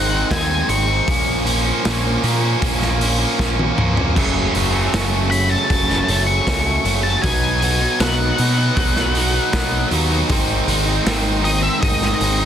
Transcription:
Already playing: G#1 D#3 G#3 C4 F#5
0.10 G#3 C4 D#4
0.31 D#2 G#5, kick, snare, open hi-hat
0.68 G#1 D#3 G#3 C4 D#4 C#6, open hi-hat
0.87 G#3 C4 D#4
1.06 A#1 A#2 F3 A#3 C#4, kick, open hi-hat
1.45 A#2 F3 A#3 C#4, open hi-hat
1.64 F3 A#3 C#4
1.84 A#1 A#2 F3 A#3 C#4, snare, open hi-hat
2.22 A#2 F3 A#3 C#4, open hi-hat
2.41 F3 A#3 C#4
2.60 A#1 A#2 F3 A#3 C#4, kick, open hi-hat
2.78 F3 A#3 C#4, snare
2.98 A#2 F3 A#3 C#4, open hi-hat
3.18 F3 A#3 C#4
3.39 A#1, kick, snare
3.59 high tom
3.76 C#2 A#2 F3 A#3 C#4, mid tom
3.95 F3 A#3 C#4, floor tom
4.14 F#1 F#2 C#3 F#3 A3 C#4, kick, crash
4.53 F#1 C#3 F#3 A3 C#4, open hi-hat
4.72 F#3 A3 C#4
4.92 F#1 F#2 C#3 F#3 A3 C#4, snare, open hi-hat
5.30 C#3 F#3 A3 C#4 B5, open hi-hat
5.49 F#3 A3 C#4 A5
5.69 F#1 F#2 C#3 F#3 A3 C#4, kick, open hi-hat
5.88 F#3 A3 C#4, snare
6.07 F#1 C#3 F#3 A3 C#4, open hi-hat
6.26 F#3 A3 C#4 C#6
6.47 C#2, kick, snare, open hi-hat
6.84 F#1 C#3 F#3 A3 C#4, open hi-hat
7.03 A3 C#4 A5
7.07 F#3
7.23 B1 B2 F#3 B3 G#5, kick, open hi-hat
7.27 D#4
7.61 B2 F#3 B3 D#4, open hi-hat
7.80 F#3 B3 D#4
8.00 B1 B2 F#3 B3 D#4 F#5, snare, open hi-hat
8.38 B2 F#3 B3 D#4, open hi-hat
8.57 F#3 B3 D#4
8.76 B1 B2 F#3 B3 D#4, kick, open hi-hat
8.95 F#3 B3 D#4, snare
9.14 B2 F#3 B3 D#4, open hi-hat
9.33 B3 D#4
9.37 F#3
9.53 B1, kick, snare, open hi-hat
9.90 D#2 B2 F#3 B3 D#4, open hi-hat
10.09 F#3 B3 D#4
10.28 G#1 G#2 D#3 G#3 C4 D#4, kick, open hi-hat
10.66 G#1 D#3 G#3 C4 D#4, open hi-hat
10.85 G#3 C4 D#4
11.04 G#1 G#2 D#3 G#3 C4 D#4, snare, open hi-hat
11.42 D#3 G#3 C4 D#4 D#5, open hi-hat
11.62 G#3 C4 D#4 E5
11.80 G#1 G#2 D#3 G#3 C4 D#4 D#5, kick, open hi-hat
12.00 G#3 C4 D#4, snare
12.19 G#1 D#3 G#3 C4 D#4, open hi-hat
12.39 C4 D#4

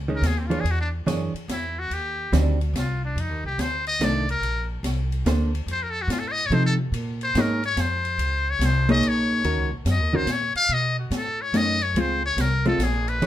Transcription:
Already playing: C#2
0.08 D#3 G#3 C#4
0.16 A#4
0.21 D#2, snare, hi-hat pedal, ride
0.27 G#4
0.39 C4
0.47 E3 D4 F4 G#4, ride
0.52 C#5
0.60 E2 G#4
0.66 ride
0.71 F#4
0.81 D4
1.06 F#2 E3 D4 G#4 C#5, snare, hi-hat pedal, ride
1.34 muted upright bass stroke, ride
1.48 E2 E4, snare, hi-hat pedal, ride
1.79 F#4
1.91 D#2 G4, ride
2.32 D2 D#3 G3 C4 D4, snare, hi-hat pedal, ride
2.61 ride
2.73 C2, snare, hi-hat pedal, ride
2.79 F4
3.05 D4
3.16 F2, ride
3.21 D#4
3.29 D#2
3.44 C2 G4
3.58 D2 C5, snare, hi-hat pedal, ride
3.87 D#5, ride
3.99 C2 D#3 A3 D4, snare, hi-hat pedal, ride
4.04 D5
4.29 A#4, ride
4.41 A#1, ride
4.83 C2, snare, hi-hat pedal, ride
5.12 ride
5.25 D2 A#3 D4 A4 C5, snare, hi-hat pedal, ride
5.55 ride
5.66 F2, ride
5.72 C5
5.83 A#4
5.91 A4
6.02 F#4
6.08 A2, snare, hi-hat pedal, ride
6.12 F4
6.19 A4
6.28 C5 D#5
6.38 ride
6.46 C3 C#5
6.52 F3 C4 D#4 A4 C5, ride
6.66 A4
6.92 A#2, ride
7.21 C5, ride
7.35 G#2 A#3 D#4 G#4 C#5, snare, hi-hat pedal, ride
7.41 A#4
7.63 C#5, ride
7.77 F2 C5, snare, hi-hat pedal, ride
8.05 ride
8.18 C#2, ride
8.50 C#5
8.59 C2, snare, hi-hat pedal, ride
8.65 C5
8.89 A#3 D#4 G#4 C#5 D#5, ride
9.01 A#1, ride
9.08 C#5
9.44 D#2 D#3 C#4 F#4 A#4, ride
9.57 C#2
9.71 A#1
9.85 F#2, snare, hi-hat pedal, ride
9.91 D#5
9.99 D#2
10.13 C#2 D#3 C#4 F#4 A#4 C5
10.26 A#2, snare, hi-hat pedal, ride
10.32 C#5
10.55 F5, muted upright bass stroke, ride
10.69 B2, ride
10.73 D#5
11.00 F#4
11.11 A2, snare, hi-hat pedal, ride
11.16 A4
11.42 C#5
11.52 F#2 A3 C#4 D#4, snare, hi-hat pedal, ride
11.57 D#5
11.81 C#5, ride
11.94 C#2 G#3 C4 F4, ride
12.00 C5
12.26 C#5
12.37 C2, snare, hi-hat pedal, ride
12.41 A#4
12.65 G#3 C4 F4 A4, ride
12.78 A#1, snare, hi-hat pedal, ride
12.84 G#4
13.08 B4, ride
13.20 G#1 E3 D4 G#4 C#5, ride

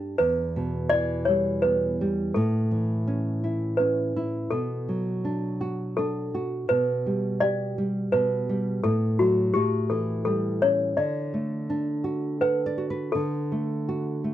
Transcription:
Already playing: G2 B3 D4 G4
0.18 E2 B4
0.56 B2
0.90 E3 D5
1.25 G3 C#5
1.62 B3 B4
2.01 G3
2.34 A2 A4
2.71 E3
3.08 C#4
3.44 E4
3.77 C#4 B4
4.16 E4
4.51 B2 A4
4.89 F#3
5.25 D4
5.61 F#4
5.97 D4 A4
6.34 F#4
6.69 B2 B4
7.06 G3
7.40 G4 D5
7.78 G3
8.12 B2 B4
8.49 G3
8.84 A2 A4
9.19 F#3 F#4
9.54 A2 G4
9.90 E3 A4
10.25 G3 A4
10.62 C#4 C#5
10.97 D3 D5
11.34 A3
11.70 D4
12.04 F#4
12.41 A4 B4 F#5
12.66 D5
12.78 F#4
12.90 B4
13.12 D3 A4
13.52 A3
13.89 F#4
14.24 A3

